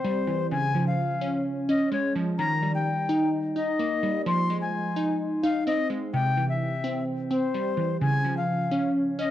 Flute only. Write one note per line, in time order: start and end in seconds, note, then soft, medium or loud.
0.00 0.47 C5 medium
0.51 0.85 G#5 loud
0.87 1.42 F5 medium
1.69 1.90 D#5 medium
1.92 2.13 C#5 medium
2.39 2.72 A#5 loud
2.75 3.29 G5 medium
3.55 4.22 D#5 medium
4.27 4.60 C6 loud
4.62 5.16 G#5 medium
5.43 5.64 F5 medium
5.67 5.88 D#5 medium
6.14 6.47 G5 loud
6.49 7.04 E5 medium
7.31 7.97 C5 medium
8.01 8.35 G#5 loud
8.37 8.92 F5 medium
9.19 9.31 D#5 medium